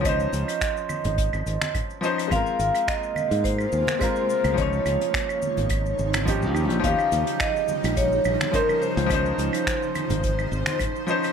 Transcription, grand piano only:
X:1
M:4/4
L:1/8
Q:"Swing 16ths" 1/4=106
K:Dblyd
V:1 name="Grand piano"
[F,DEc]4- [F,DEc] z2 [F,DEc] | [A,CFB]4- [A,CFB] z [A,CFB]2 | [F,DEd]4- [F,DEd] z [F,DEG]2 | [F,DEG]4- [F,DEG] z [F,DEc]2 |
[F,DEc]4- [F,DEc] z2 [F,DEc] |]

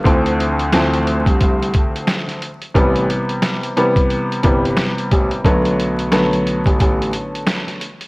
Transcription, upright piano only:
X:1
M:4/4
L:1/8
Q:"Swing 16ths" 1/4=89
K:Am
V:1 name="Upright piano" clef=bass
[D,,E,F,A,C]2 [D,,E,F,A,C]4- [D,,E,F,A,C] z | [C,E,G,B,]3 [C,E,G,B,]2 [C,E,G,B,]3 | [D,^F,A,B,]2 [D,F,A,B,]4- [D,F,A,B,] z |]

